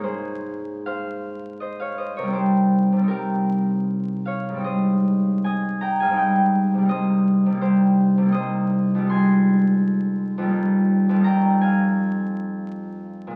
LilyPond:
<<
  \new Staff \with { instrumentName = "Harp" } { \time 3/4 \key aes \major \tempo 4 = 82 <aes' bes' c'' des'' bes''>4 <c'' f''>4 <c'' ees''>16 <des'' f''>16 <c'' ees''>16 <bes' des''>16 | <g' c''>4 <g' bes'>4. <des'' f''>8 | <c'' ees''>4 <ees'' aes''>8 <g'' bes''>16 <f'' aes''>16 <ees'' g''>4 | <c'' ees''>4 <g' c''>4 <c'' ees''>4 |
<aes'' c'''>2. | <g'' bes''>8 <f'' aes''>2~ <f'' aes''>8 | }
  \new Staff \with { instrumentName = "Harp" } { \clef bass \time 3/4 \key aes \major <aes, aes bes ees'>2. | <c g c' ees'>4 <c g c' ees'>2 | <aes, g c' ees'>2 <aes, g c' ees'>4 | <c g bes ees'>4 <c g bes ees'>4 <c g bes ees'>4 |
<f, g aes ees'>2 <f, g bes ees'>4 | <f, g bes ees'>2. | }
>>